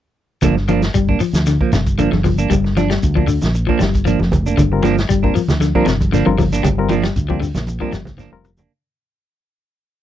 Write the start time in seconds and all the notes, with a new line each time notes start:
0.42 G1 D3 F3 A#3 D4, kick, closed hi-hat, low conga, shekere
0.57 muted clean electric guitar stroke, snare
0.68 F3 A#3 D4, closed hi-hat, high conga, shekere
0.82 muted clean electric guitar stroke, snare, closed hi-hat, shekere
0.94 G1 G3, kick, closed hi-hat, shekere
1.09 A#3 D4, kick
1.20 F3, muted fingered electric bass stroke, muted clean electric guitar stroke, open hi-hat, shekere
1.33 D2, muted clean electric guitar stroke, snare, closed hi-hat, high conga, shekere
1.46 D3, muted clean electric guitar stroke, snare, closed hi-hat, shekere
1.61 F3 A#3, muted clean electric guitar stroke, kick
1.72 G1 C3, muted clean electric guitar stroke, snare, closed hi-hat, high conga, shekere
1.86 kick, closed hi-hat, shekere
1.98 D3 F3 A#3 D4, closed hi-hat, shekere
2.12 G1 D3, muted clean electric guitar stroke, snare, high conga
2.24 F3, muted clean electric guitar stroke, kick, open hi-hat, low conga, shekere
2.38 A#3 D4, closed hi-hat, shekere
2.50 G1 G3, kick, closed hi-hat, low conga, shekere
2.64 muted clean electric guitar stroke, snare
2.77 F3 D4, muted clean electric guitar stroke, snare, closed hi-hat, high conga, shekere
2.90 G3, muted clean electric guitar stroke, snare, closed hi-hat, shekere
3.03 D2, kick, closed hi-hat, shekere
3.15 F3 A#3 D4, kick
3.27 D3, muted clean electric guitar stroke, open hi-hat, shekere
3.42 A#1, muted clean electric guitar stroke, snare, closed hi-hat, high conga, shekere
3.54 muted clean electric guitar stroke, closed hi-hat, shekere
3.67 F3 A#3 D4, kick
3.79 G1 G3, muted clean electric guitar stroke, snare, closed hi-hat, high conga, shekere
3.94 kick, closed hi-hat, shekere
4.05 F3 A#3 D4, closed hi-hat, shekere
4.20 F1, muted clean electric guitar stroke, snare, high conga
4.32 muted clean electric guitar stroke, kick, closed hi-hat, low conga, shekere
4.46 A#3 D4, shekere
4.57 G1 D3, kick, closed hi-hat, low conga, shekere
4.72 G3 C4 F4 A#4, muted clean electric guitar stroke
4.83 F3 A#3 D4, snare, closed hi-hat, high conga, shekere
4.97 muted clean electric guitar stroke, snare, closed hi-hat, shekere
5.09 G1 G3, kick, closed hi-hat, shekere
5.23 G3 A#3 C4 D4 F4 A#4, kick
5.35 F3, muted clean electric guitar stroke, muted fingered electric bass stroke, open hi-hat, shekere
5.48 D2, muted clean electric guitar stroke, snare, closed hi-hat, high conga, low conga, shekere
5.60 D3, muted clean electric guitar stroke, snare, closed hi-hat, high conga, shekere
5.75 F3 G3 A#3 C4 D4 F4 A#4, kick
5.86 G1 C3, muted clean electric guitar stroke, snare, closed hi-hat, high conga, shekere
6.00 kick, closed hi-hat, high conga, shekere
6.12 D3 F3 A#3 D4, snare, closed hi-hat, shekere
6.26 G1 D3 G3 C4 F4 A#4, muted clean electric guitar stroke, high conga
6.38 F3, muted clean electric guitar stroke, kick, open hi-hat, high conga, low conga, shekere
6.53 A#3 D4, snare, closed hi-hat, shekere
6.63 G1 G3, kick, closed hi-hat, low conga, shekere
6.78 G3 C4 F4 A#4, muted clean electric guitar stroke
6.89 F3 A#3 D4, closed hi-hat, high conga, shekere
7.03 G3, muted clean electric guitar stroke, snare, closed hi-hat, shekere
7.16 D2, kick, closed hi-hat, shekere
7.29 F3 G3 A#3 C4 D4 F4 G4, kick
7.40 D3, muted clean electric guitar stroke, open hi-hat, shekere
7.55 A#1, muted clean electric guitar stroke, snare, closed hi-hat, high conga, low conga, shekere
7.67 muted clean electric guitar stroke, closed hi-hat, high conga, shekere
7.80 F3 G3 A#3 C4 D4 F4 A#4, kick
7.92 G1 G3, snare, closed hi-hat, high conga, shekere
8.05 kick, snare, closed hi-hat, low conga, shekere
8.18 F3 A#3 D4, snare, low conga, shekere
8.32 F1 G3 C4 F4 A#4, muted clean electric guitar stroke
8.45 muted clean electric guitar stroke, mid tom, shekere
8.57 A#3 D4, floor tom, low conga, shekere